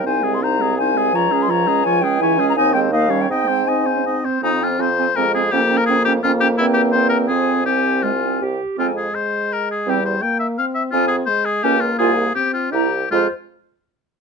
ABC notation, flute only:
X:1
M:3/4
L:1/16
Q:1/4=166
K:Ab
V:1 name="Flute"
a3 c' b4 a4 | b3 c' b4 a2 g2 | a3 b a2 g2 f3 g | g4 a6 z2 |
[K:Fm] a2 a2 a2 a2 a2 a2 | g2 g2 g2 g2 g2 g2 | g4 g4 a4 | a4 a4 g2 z2 |
a2 z8 z2 | g2 z8 z2 | a2 z6 a2 z2 | a2 z6 b2 z2 |
c2 z8 z2 |]